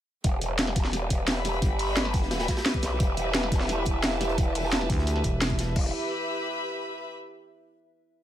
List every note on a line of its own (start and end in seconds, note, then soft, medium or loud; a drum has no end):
0.24 1.09 E1 loud
0.24 5.75 G4 medium
0.24 kick loud
0.24 closed hi-hat medium
0.41 closed hi-hat loud
0.41 closed hi-hat medium
0.59 snare loud
0.59 closed hi-hat medium
0.67 5.76 B4 medium
0.67 snare medium
0.76 kick loud
0.76 snare soft
0.76 closed hi-hat medium
0.76 closed hi-hat loud
0.85 snare soft
0.93 snare medium
0.93 closed hi-hat medium
1.10 1.61 E1 loud
1.10 5.76 E5 medium
1.10 kick medium
1.10 closed hi-hat loud
1.10 closed hi-hat medium
1.15 3.43 B5 medium
1.28 snare loud
1.28 closed hi-hat medium
1.45 snare soft
1.45 closed hi-hat loud
1.45 closed hi-hat medium
1.53 closed hi-hat soft
1.62 2.47 G1 loud
1.62 kick loud
1.62 closed hi-hat medium
1.62 closed hi-hat loud
1.79 closed hi-hat medium
1.79 open hi-hat medium
1.96 snare loud
1.96 closed hi-hat medium
2.05 snare medium
2.14 kick loud
2.14 closed hi-hat medium
2.14 open hi-hat medium
2.22 snare soft
2.31 snare loud
2.31 closed hi-hat medium
2.40 snare loud
2.40 snare soft
2.40 closed hi-hat medium
2.48 kick medium
2.48 snare loud
2.48 closed hi-hat medium
2.48 closed hi-hat loud
2.57 snare loud
2.57 closed hi-hat medium
2.66 snare loud
2.66 closed hi-hat medium
2.74 kick medium
2.82 2.99 B1 loud
2.82 snare medium
2.82 closed hi-hat medium
3.00 3.85 E1 loud
3.00 5.73 E4 medium
3.00 5.73 B4 medium
3.00 5.73 E5 medium
3.00 kick loud
3.00 closed hi-hat medium
3.17 closed hi-hat medium
3.33 5.76 A5 medium
3.33 snare loud
3.33 closed hi-hat medium
3.43 snare medium
3.52 kick loud
3.52 snare soft
3.52 closed hi-hat medium
3.60 snare soft
3.69 snare medium
3.69 closed hi-hat medium
3.85 4.37 E1 loud
3.85 kick medium
3.85 closed hi-hat medium
4.03 snare loud
4.03 closed hi-hat medium
4.21 snare soft
4.21 closed hi-hat medium
4.29 closed hi-hat soft
4.38 4.88 E1 loud
4.38 kick loud
4.38 closed hi-hat medium
4.55 closed hi-hat medium
4.55 open hi-hat medium
4.73 snare loud
4.73 closed hi-hat medium
4.81 snare medium
4.90 5.23 D2 loud
4.90 kick loud
4.90 closed hi-hat medium
4.90 open hi-hat medium
4.98 snare medium
5.07 closed hi-hat medium
5.07 closed hi-hat loud
5.16 snare soft
5.24 5.75 E1 loud
5.24 kick medium
5.24 closed hi-hat medium
5.41 snare loud
5.41 closed hi-hat medium
5.50 kick medium
5.59 snare medium
5.59 closed hi-hat medium
5.76 5.92 E1 loud
5.76 5.92 E4 medium
5.76 7.10 G4 medium
5.76 5.92 B4 medium
5.76 5.92 E5 medium
5.76 kick loud
5.76 crash medium
5.81 7.10 B4 medium
5.86 7.10 E5 medium
5.91 7.10 B5 medium